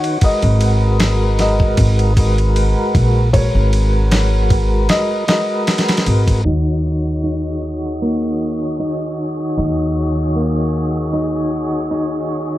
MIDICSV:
0, 0, Header, 1, 7, 480
1, 0, Start_track
1, 0, Key_signature, -6, "minor"
1, 0, Tempo, 779221
1, 137, Time_signature, 4, 2, 24, 8
1, 7749, End_track
2, 0, Start_track
2, 0, Title_t, "Felt piano"
2, 0, Program_c, 0, 0
2, 0, Note_on_c, 0, 78, 92
2, 148, Note_off_c, 0, 78, 0
2, 148, Note_on_c, 0, 75, 86
2, 838, Note_off_c, 0, 75, 0
2, 863, Note_on_c, 0, 75, 77
2, 1795, Note_off_c, 0, 75, 0
2, 2053, Note_on_c, 0, 73, 108
2, 2751, Note_off_c, 0, 73, 0
2, 3015, Note_on_c, 0, 75, 102
2, 3245, Note_off_c, 0, 75, 0
2, 3254, Note_on_c, 0, 75, 101
2, 3711, Note_off_c, 0, 75, 0
2, 7749, End_track
3, 0, Start_track
3, 0, Title_t, "Synth texture"
3, 0, Program_c, 1, 99
3, 3969, Note_on_c, 1, 68, 72
3, 7749, Note_off_c, 1, 68, 0
3, 7749, End_track
4, 0, Start_track
4, 0, Title_t, "Tonewheel organ"
4, 0, Program_c, 2, 16
4, 0, Note_on_c, 2, 51, 80
4, 0, Note_on_c, 2, 63, 75
4, 0, Note_on_c, 2, 66, 76
4, 0, Note_on_c, 2, 73, 97
4, 107, Note_off_c, 2, 51, 0
4, 111, Note_off_c, 2, 63, 0
4, 114, Note_off_c, 2, 66, 0
4, 116, Note_off_c, 2, 73, 0
4, 132, Note_on_c, 2, 56, 78
4, 138, Note_on_c, 2, 66, 75
4, 143, Note_on_c, 2, 70, 72
4, 150, Note_on_c, 2, 71, 87
4, 1308, Note_off_c, 2, 56, 0
4, 1311, Note_off_c, 2, 66, 0
4, 1314, Note_off_c, 2, 70, 0
4, 1317, Note_off_c, 2, 71, 0
4, 1330, Note_on_c, 2, 56, 85
4, 1337, Note_on_c, 2, 66, 77
4, 1341, Note_on_c, 2, 70, 71
4, 1349, Note_on_c, 2, 71, 94
4, 2027, Note_off_c, 2, 56, 0
4, 2031, Note_off_c, 2, 66, 0
4, 2033, Note_off_c, 2, 70, 0
4, 2036, Note_off_c, 2, 71, 0
4, 2050, Note_on_c, 2, 56, 77
4, 2056, Note_on_c, 2, 66, 70
4, 2063, Note_on_c, 2, 70, 73
4, 2067, Note_on_c, 2, 71, 82
4, 3227, Note_off_c, 2, 56, 0
4, 3230, Note_off_c, 2, 66, 0
4, 3234, Note_off_c, 2, 70, 0
4, 3235, Note_off_c, 2, 71, 0
4, 3248, Note_on_c, 2, 56, 86
4, 3255, Note_on_c, 2, 66, 79
4, 3262, Note_on_c, 2, 70, 82
4, 3266, Note_on_c, 2, 71, 93
4, 3946, Note_off_c, 2, 56, 0
4, 3949, Note_off_c, 2, 66, 0
4, 3953, Note_off_c, 2, 70, 0
4, 3955, Note_off_c, 2, 71, 0
4, 3971, Note_on_c, 2, 51, 62
4, 3977, Note_on_c, 2, 63, 55
4, 3983, Note_on_c, 2, 66, 58
4, 3988, Note_on_c, 2, 73, 72
4, 7749, Note_off_c, 2, 51, 0
4, 7749, Note_off_c, 2, 63, 0
4, 7749, Note_off_c, 2, 66, 0
4, 7749, Note_off_c, 2, 73, 0
4, 7749, End_track
5, 0, Start_track
5, 0, Title_t, "Nylon-string guitar"
5, 0, Program_c, 3, 24
5, 3974, Note_on_c, 3, 63, 86
5, 4204, Note_off_c, 3, 63, 0
5, 4455, Note_on_c, 3, 63, 60
5, 4685, Note_off_c, 3, 63, 0
5, 4938, Note_on_c, 3, 58, 66
5, 5395, Note_off_c, 3, 58, 0
5, 5417, Note_on_c, 3, 63, 85
5, 5646, Note_off_c, 3, 63, 0
5, 5899, Note_on_c, 3, 63, 73
5, 6127, Note_off_c, 3, 63, 0
5, 6378, Note_on_c, 3, 58, 64
5, 6836, Note_off_c, 3, 58, 0
5, 6855, Note_on_c, 3, 63, 83
5, 7085, Note_off_c, 3, 63, 0
5, 7336, Note_on_c, 3, 63, 67
5, 7565, Note_off_c, 3, 63, 0
5, 7749, End_track
6, 0, Start_track
6, 0, Title_t, "Upright bass"
6, 0, Program_c, 4, 32
6, 264, Note_on_c, 4, 32, 93
6, 1074, Note_off_c, 4, 32, 0
6, 1097, Note_on_c, 4, 32, 89
6, 1682, Note_off_c, 4, 32, 0
6, 1816, Note_on_c, 4, 34, 90
6, 2162, Note_off_c, 4, 34, 0
6, 2186, Note_on_c, 4, 32, 89
6, 2995, Note_off_c, 4, 32, 0
6, 3736, Note_on_c, 4, 32, 79
6, 3950, Note_off_c, 4, 32, 0
6, 3976, Note_on_c, 4, 39, 72
6, 5874, Note_off_c, 4, 39, 0
6, 5898, Note_on_c, 4, 39, 76
6, 7749, Note_off_c, 4, 39, 0
6, 7749, End_track
7, 0, Start_track
7, 0, Title_t, "Drums"
7, 23, Note_on_c, 9, 51, 42
7, 85, Note_off_c, 9, 51, 0
7, 131, Note_on_c, 9, 51, 86
7, 134, Note_on_c, 9, 36, 107
7, 193, Note_off_c, 9, 51, 0
7, 195, Note_off_c, 9, 36, 0
7, 261, Note_on_c, 9, 51, 44
7, 322, Note_off_c, 9, 51, 0
7, 373, Note_on_c, 9, 51, 75
7, 435, Note_off_c, 9, 51, 0
7, 614, Note_on_c, 9, 51, 84
7, 618, Note_on_c, 9, 38, 112
7, 676, Note_off_c, 9, 51, 0
7, 679, Note_off_c, 9, 38, 0
7, 855, Note_on_c, 9, 51, 67
7, 859, Note_on_c, 9, 38, 50
7, 917, Note_off_c, 9, 51, 0
7, 920, Note_off_c, 9, 38, 0
7, 985, Note_on_c, 9, 36, 86
7, 1047, Note_off_c, 9, 36, 0
7, 1092, Note_on_c, 9, 51, 90
7, 1095, Note_on_c, 9, 36, 104
7, 1154, Note_off_c, 9, 51, 0
7, 1156, Note_off_c, 9, 36, 0
7, 1226, Note_on_c, 9, 51, 42
7, 1287, Note_off_c, 9, 51, 0
7, 1335, Note_on_c, 9, 51, 86
7, 1336, Note_on_c, 9, 36, 101
7, 1397, Note_off_c, 9, 36, 0
7, 1397, Note_off_c, 9, 51, 0
7, 1467, Note_on_c, 9, 51, 38
7, 1529, Note_off_c, 9, 51, 0
7, 1577, Note_on_c, 9, 51, 55
7, 1638, Note_off_c, 9, 51, 0
7, 1816, Note_on_c, 9, 36, 86
7, 1817, Note_on_c, 9, 51, 64
7, 1878, Note_off_c, 9, 36, 0
7, 1878, Note_off_c, 9, 51, 0
7, 2056, Note_on_c, 9, 36, 106
7, 2057, Note_on_c, 9, 51, 78
7, 2118, Note_off_c, 9, 36, 0
7, 2118, Note_off_c, 9, 51, 0
7, 2296, Note_on_c, 9, 51, 69
7, 2358, Note_off_c, 9, 51, 0
7, 2534, Note_on_c, 9, 51, 84
7, 2538, Note_on_c, 9, 38, 113
7, 2596, Note_off_c, 9, 51, 0
7, 2599, Note_off_c, 9, 38, 0
7, 2774, Note_on_c, 9, 51, 64
7, 2775, Note_on_c, 9, 36, 93
7, 2836, Note_off_c, 9, 36, 0
7, 2836, Note_off_c, 9, 51, 0
7, 3012, Note_on_c, 9, 51, 77
7, 3016, Note_on_c, 9, 38, 101
7, 3074, Note_off_c, 9, 51, 0
7, 3077, Note_off_c, 9, 38, 0
7, 3253, Note_on_c, 9, 51, 78
7, 3257, Note_on_c, 9, 38, 113
7, 3315, Note_off_c, 9, 51, 0
7, 3319, Note_off_c, 9, 38, 0
7, 3494, Note_on_c, 9, 51, 63
7, 3497, Note_on_c, 9, 38, 88
7, 3555, Note_off_c, 9, 51, 0
7, 3559, Note_off_c, 9, 38, 0
7, 3561, Note_on_c, 9, 51, 62
7, 3565, Note_on_c, 9, 38, 84
7, 3623, Note_off_c, 9, 51, 0
7, 3625, Note_on_c, 9, 51, 62
7, 3626, Note_off_c, 9, 38, 0
7, 3629, Note_on_c, 9, 38, 86
7, 3679, Note_off_c, 9, 51, 0
7, 3679, Note_on_c, 9, 51, 64
7, 3683, Note_off_c, 9, 38, 0
7, 3683, Note_on_c, 9, 38, 82
7, 3735, Note_off_c, 9, 51, 0
7, 3735, Note_on_c, 9, 51, 60
7, 3744, Note_off_c, 9, 38, 0
7, 3797, Note_off_c, 9, 51, 0
7, 3866, Note_on_c, 9, 36, 90
7, 3866, Note_on_c, 9, 51, 72
7, 3927, Note_off_c, 9, 36, 0
7, 3928, Note_off_c, 9, 51, 0
7, 7749, End_track
0, 0, End_of_file